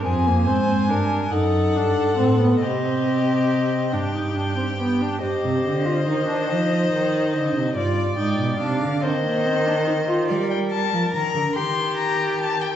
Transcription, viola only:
X:1
M:6/8
L:1/16
Q:3/8=47
K:Cm
V:1 name="Viola"
C B, C2 D2 ^D2 =D2 C =B, | C6 D E D C =B, D | G3 F E D E6 | F2 E2 D2 C B, C D E F |
z12 |]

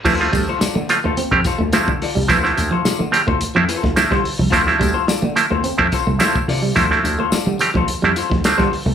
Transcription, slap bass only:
X:1
M:4/4
L:1/16
Q:1/4=107
K:Dm
V:1 name="Slap bass" clef=bass
D,,2 D,, z2 D, z D,, z F,, z D,, z D, z C,, | D,,2 D,, z2 D, z D,, z F,, z D,, z D, z C,, | D,,2 D,, z2 D, z D,, z F,, z C,, z2 C,2 | D,,2 D,, z2 D, z D,, z F,, z D,, z D, z C,, |]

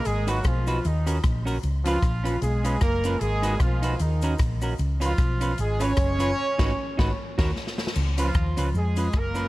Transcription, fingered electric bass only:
X:1
M:4/4
L:1/8
Q:"Swing" 1/4=152
K:Dbmix
V:1 name="Fingered electric bass" clef=bass
A,,,2 C,,2 E,,2 B,,,2 | D,,2 B,,,2 C,,2 G,,,2 | A,,,2 C,,2 E,,2 B,,,2 | D,,2 C,,2 A,,,2 G,,,2 |
z A,,, z A,,, z E,, z2 | D,,2 E,, D,, F,,2 G,,,2 |]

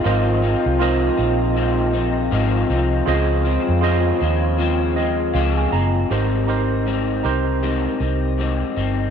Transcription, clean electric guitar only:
X:1
M:4/4
L:1/8
Q:"Swing 16ths" 1/4=79
K:Dblyd
V:1 name="Clean electric guitar" clef=bass
[A,,F,CE] [F,CE] [A,,F,CE] [F,CE] [A,,F,CE] [F,CE] [A,,F,CE] [F,CE] | [D,F,A,C] [F,A,C] [D,F,A,C] [F,A,C] [D,F,A,C] [F,A,C] [D,F,A,C] [F,A,C] | [K:Ab] [A,,G,CE] [G,CE] [A,,G,CE] [G,CE] [A,,G,CE] [G,CE] [A,,G,CE] [G,CE] |]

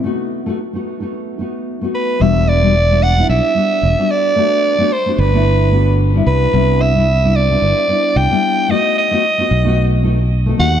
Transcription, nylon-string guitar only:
X:1
M:4/4
L:1/16
Q:"Swing 16ths" 1/4=111
K:Em
V:1 name="Nylon-string guitar"
[A,B,^DF]3 [A,B,DF] z [A,B,DF]2 [A,B,DF]3 [A,B,DF]3 [A,B,DF]3 | [G,B,DF]3 [G,B,DF] z [G,B,DF]2 [G,B,DE]3 [G,B,DF]3 [G,B,DF]3 | [A,B,DF]3 [A,B,DF] z [A,B,DF]2 [A,B,DE]3 [A,B,DF]3 [G,B,DE]3 | [G,B,DE]3 [G,B,DE] z [G,B,DE]2 [G,B,DE]3 [G,B,DE]3 [G,B,DE]3 |
[A,B,^DF]3 [A,B,DF] z [A,B,DF]2 [A,B,DF]3 [A,B,DF] z2 [A,B,DA] [A,B,DF] z |]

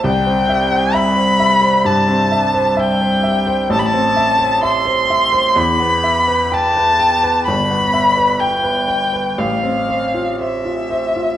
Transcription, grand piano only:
X:1
M:4/4
L:1/16
Q:1/4=64
K:Em
V:1 name="Grand piano"
C,, C e c e c e c G,, C e c e c e c | A,,, C e c e c e c E,, B, e B g B g B | G,,, B, e B g B g B A,,, C c =F c F c F |]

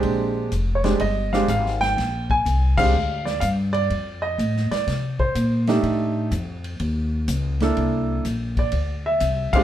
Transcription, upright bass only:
X:1
M:4/4
L:1/8
Q:"Swing" 1/4=124
K:Fmix
V:1 name="Upright bass" clef=bass
B,,,2 F,,,2 G,,,2 _A,,,2 | B,,,2 C,,2 D,,2 G,,2 | F,,2 A,, z C,2 B,,2 | A,,2 F,,2 E,,2 _D,,2 |
C,,2 B,,,2 D,,2 C,, z |]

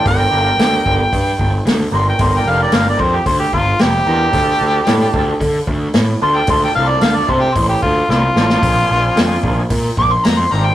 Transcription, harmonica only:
X:1
M:4/4
L:1/16
Q:1/4=112
K:Dm
V:1 name="Harmonica"
g12 z2 c' g | c' g f d f d c G c G F2 G4- | G8 z6 c' g | c' g f d f d c G c G F2 F4- |
F8 z2 d' c' b c' b g |]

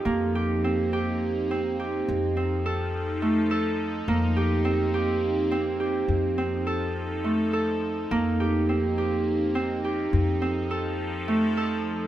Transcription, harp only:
X:1
M:7/8
L:1/8
Q:1/4=104
K:Fmix
V:1 name="Harp"
B, G C G2 C G- | G C A2 A, A2 | B, G C G2 C G- | G C A2 A, A2 |
B, G C G2 C G- | G C A2 A, A2 |]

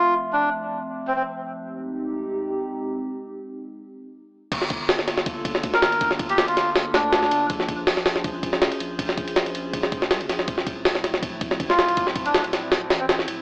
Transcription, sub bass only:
X:1
M:4/4
L:1/16
Q:1/4=161
K:Gdor
V:1 name="Sub bass" clef=bass
z16 | z16 | z16 | G,,,4- G,,, G,,,4- G,,, G,,,2 D,, z G,,,2- |
G,,,4- G,,, G,,,4- G,,, D,,4 G,,,2 | B,,,4- B,,, B,,,4- B,,, B,,,2 F,,, z B,,,2- | B,,,4- B,,, B,,,4- B,,, F,,,2 _D,, F,,, B,,,2 | D,,,4- D,,, D,,,4- D,,, D,,,2 A,,, z D,,,2- |
D,,,4- D,,, D,,,4- D,,, A,,,4 D,,,2 |]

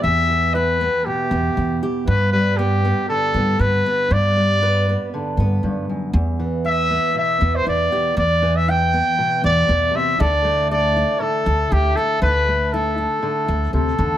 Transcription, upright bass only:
X:1
M:4/4
L:1/8
Q:1/4=118
K:Em
V:1 name="Upright bass" clef=bass
E,,4 z E,, E,, z | G,,4 z G,, G,, z | G,,4 z G,, F,, z | E,,4 z E,, E,, z |
E,,4 z E,, E,, z | D,,4 z D,, D,, z | D,,4 z D,, D,, E,, |]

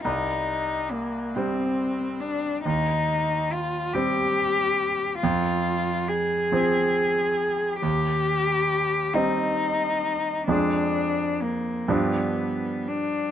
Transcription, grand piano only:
X:1
M:6/8
L:1/8
Q:3/8=46
K:Cm
V:1 name="Grand piano" clef=bass
C,,3 [G,C]3 | E,,3 [G,C]3 | F,,3 [F,C]3 | E,,3 [G,CE]3 |
[F,,F,A,D]3 [G,,F,G,D]3 |]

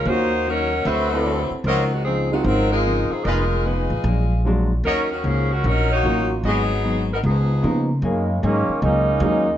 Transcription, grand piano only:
X:1
M:4/4
L:1/8
Q:"Swing" 1/4=151
K:Ebm
V:1 name="Grand piano"
[B,DFG] z4 [=C=E=A=B]3 | z3 [A,=CEF]3 z2 | z6 [G,A,=DF] z | z6 [G,B,DF]2 |
z6 [F,B,CE] z | [K:F#] z6 [F,G,A,CD] z |]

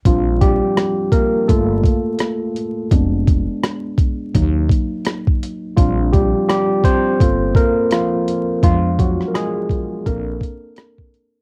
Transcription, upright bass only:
X:1
M:4/4
L:1/16
Q:"Swing 16ths" 1/4=84
K:Bb
V:1 name="Upright bass" clef=bass
B,,,3 z4 z G,,,2 z6 | F,,,3 z4 z E,,2 z6 | B,,,3 z4 z G,,,2 z6 | F,,3 z4 z B,,,2 z6 |]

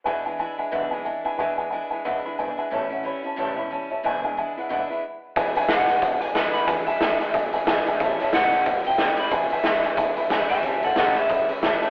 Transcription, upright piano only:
X:1
M:4/4
L:1/8
Q:"Swing" 1/4=182
K:Emix
V:1 name="Upright piano"
[Beg] [Beg] [Beg] [Beg] [Bef] [Beg] [Beg] [Beg] | [Beg] [Beg] [Beg] [Beg] [Bef] [Beb] [Beg] [Beg] | [cea] [cef] [ceb] [cea] [cea] [ceb] [cea] [cea] | [Beg] [Beg] [Beg] [Bef] [Bef] [Beb] z2 |
[Beg] [Beg] [Beg] [Beg] [Beg] [Beg] [Beg] [Bef] | [Beg] [Beg] [Beg] [Beg] [Beg] [Beg] [Beg] [Beg] | [cea] [cea] a [cea] [ce=g] [cea] [cea] [ceg] | [Beg] [Beg] [Beg] [Beg] [Beg] [Beb] [Beg] [Beb] |
[cea] [cea] [cea] [ceb] [ceb] [ceb] [cea] [cea] |]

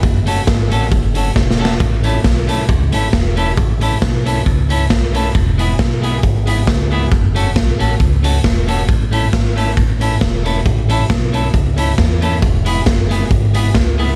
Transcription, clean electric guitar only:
X:1
M:4/4
L:1/8
Q:"Swing" 1/4=136
K:A
V:1 name="Clean electric guitar"
z [A,CFA] z [A,CFA] z [A,CFA] z [A,CFA] | z [A,CEA] z [A,CEA] z [A,CEA] z [A,CEA] | z [A,CEA] z [A,CEA] z [A,CEA] z [A,CEA] | z [G,B,EG] z [G,B,EG] z [G,B,EG] z [G,B,EG] |
z [A,CFA] z [A,CFA] z [A,CFA] z [A,CFA] | z [A,CEA] z [A,CEA] z [A,CEA] z [A,CEA] | z [A,CEA] z [A,CEA] z [A,CEA] z [A,CEA] | z [G,B,EG] z [G,B,EG] z [G,B,EG] z [G,B,EG] |]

